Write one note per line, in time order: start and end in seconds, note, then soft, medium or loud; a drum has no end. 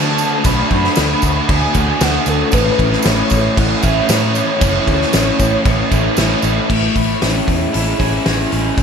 0.00 0.24 D3 medium
0.00 0.42 D3 medium
0.00 0.44 A3 medium
0.00 0.44 D4 medium
0.00 0.44 F#4 medium
0.00 0.45 A5 loud
0.18 tambourine medium
0.18 crash medium
0.44 0.61 B1 loud
0.44 0.94 D3 loud
0.44 0.72 A3 loud
0.44 0.70 D4 loud
0.44 0.69 F#4 loud
0.44 1.53 B5 loud
0.44 kick loud
0.44 tambourine medium
0.44 crash medium
0.70 0.87 F#2 medium
0.70 0.96 A3 medium
0.70 0.96 D4 medium
0.70 0.96 F#4 medium
0.70 kick medium
0.70 crash medium
0.84 snare soft
0.96 1.13 D2 loud
0.96 1.48 D3 medium
0.96 1.48 A3 medium
0.96 1.49 D4 medium
0.96 1.49 F#4 medium
0.96 snare loud
0.96 tambourine medium
0.96 crash medium
1.22 1.39 D2 medium
1.22 kick medium
1.22 tambourine medium
1.22 crash medium
1.49 1.65 D2 medium
1.49 1.99 D3 loud
1.49 2.01 A3 loud
1.49 2.01 D4 loud
1.49 2.01 F#4 loud
1.49 2.04 G#5 loud
1.49 kick loud
1.49 crash medium
1.73 1.91 D2 loud
1.73 1.98 D3 medium
1.73 2.00 A3 medium
1.73 1.99 D4 medium
1.73 1.98 F#4 medium
1.73 kick medium
1.73 tambourine medium
1.73 crash medium
2.00 2.17 D2 loud
2.00 2.51 D3 medium
2.00 2.52 A3 medium
2.00 2.52 D4 medium
2.00 2.52 F#4 medium
2.00 2.29 F#5 loud
2.00 snare loud
2.00 tambourine medium
2.00 crash medium
2.26 2.42 D2 medium
2.26 2.53 A4 medium
2.26 tambourine medium
2.26 crash medium
2.52 2.69 A1 loud
2.52 3.55 A2 medium
2.52 3.04 E3 loud
2.52 2.79 A3 loud
2.52 2.78 C#4 loud
2.52 2.77 E4 loud
2.52 3.07 B4 loud
2.52 kick loud
2.52 tambourine medium
2.52 crash medium
2.78 2.95 A1 loud
2.78 3.05 A3 medium
2.78 3.05 C#4 medium
2.78 3.05 E4 medium
2.78 kick medium
2.78 crash medium
2.92 snare soft
3.03 3.21 A1 loud
3.03 3.56 E3 medium
3.03 3.56 A3 medium
3.03 3.57 C#4 medium
3.03 3.57 E4 medium
3.03 3.59 C#5 loud
3.03 snare loud
3.03 tambourine medium
3.03 crash medium
3.30 3.47 A1 medium
3.30 kick medium
3.30 tambourine medium
3.30 crash medium
3.56 3.73 A1 medium
3.56 4.59 A2 loud
3.56 4.06 E3 loud
3.56 4.07 A3 loud
3.56 4.08 C#4 loud
3.56 4.08 E4 loud
3.56 3.85 F#5 loud
3.56 kick loud
3.56 crash medium
3.82 3.99 A1 loud
3.82 4.07 A2 medium
3.82 4.08 E3 medium
3.82 4.09 A3 medium
3.82 4.09 C#4 medium
3.82 4.09 E4 medium
3.82 4.12 E5 medium
3.82 kick medium
3.82 tambourine medium
3.82 crash medium
4.07 4.60 A2 medium
4.07 4.40 A2 medium
4.07 4.59 E3 medium
4.07 4.59 A3 medium
4.07 4.60 C#4 medium
4.07 4.60 E4 medium
4.07 4.61 C#5 loud
4.07 snare loud
4.07 tambourine medium
4.07 crash medium
4.35 tambourine medium
4.35 crash medium
4.59 4.77 F#1 loud
4.59 5.12 A2 medium
4.59 5.10 E3 loud
4.59 4.86 A3 medium
4.59 4.85 C#4 loud
4.59 4.84 E4 loud
4.59 6.13 C#5 loud
4.59 kick loud
4.59 tambourine medium
4.59 crash medium
4.85 5.03 D2 medium
4.85 5.11 A3 medium
4.85 5.11 C#4 medium
4.85 5.12 E4 medium
4.85 kick medium
4.85 crash medium
5.01 snare soft
5.11 5.29 A1 medium
5.11 5.63 E3 medium
5.11 5.63 A3 medium
5.11 5.64 C#4 medium
5.11 5.64 E4 medium
5.11 snare loud
5.11 tambourine medium
5.11 crash medium
5.39 5.55 A1 medium
5.39 kick medium
5.39 tambourine medium
5.39 crash medium
5.64 5.81 A1 medium
5.64 6.42 A2 medium
5.64 6.16 E3 loud
5.64 6.16 A3 loud
5.64 6.17 C#4 loud
5.64 6.17 E4 loud
5.64 kick loud
5.64 tambourine soft
5.64 crash medium
5.90 6.07 A1 medium
5.90 6.15 A2 medium
5.90 6.16 E3 medium
5.90 6.16 A3 medium
5.90 6.15 C#4 medium
5.90 6.15 E4 medium
5.90 kick medium
5.90 tambourine medium
5.90 crash medium
6.16 6.33 A1 medium
6.16 6.67 A2 medium
6.16 6.67 E3 medium
6.16 6.68 A3 medium
6.16 6.68 C#4 medium
6.16 6.68 E4 medium
6.16 snare loud
6.16 tambourine medium
6.16 crash medium
6.42 6.59 A1 medium
6.42 tambourine medium
6.42 crash medium
6.69 6.87 A1 medium
6.69 8.00 A2 medium
6.69 8.02 A3 medium
6.69 kick loud
6.69 crash loud
6.96 7.13 A1 medium
6.96 7.72 E4 medium
6.96 kick medium
6.96 open hi-hat medium
7.21 7.40 A1 medium
7.21 7.97 C#4 medium
7.21 7.73 E4 medium
7.21 snare loud
7.21 open hi-hat medium
7.46 7.66 E2 medium
7.46 8.50 G#3 medium
7.46 kick medium
7.46 open hi-hat medium
7.72 7.92 A1 medium
7.72 8.83 E4 medium
7.72 open hi-hat medium
7.99 8.17 A1 medium
7.99 8.83 C#4 medium
7.99 8.83 G#4 medium
7.99 kick medium
7.99 open hi-hat medium
8.25 8.44 A1 medium
8.25 8.83 E3 medium
8.25 8.83 E4 medium
8.25 snare medium
8.25 open hi-hat medium
8.51 8.70 A1 medium
8.51 8.83 G#3 medium
8.51 8.83 C#4 medium
8.51 open hi-hat soft
8.77 8.83 A1 medium
8.77 8.83 A2 medium
8.77 kick loud
8.77 open hi-hat medium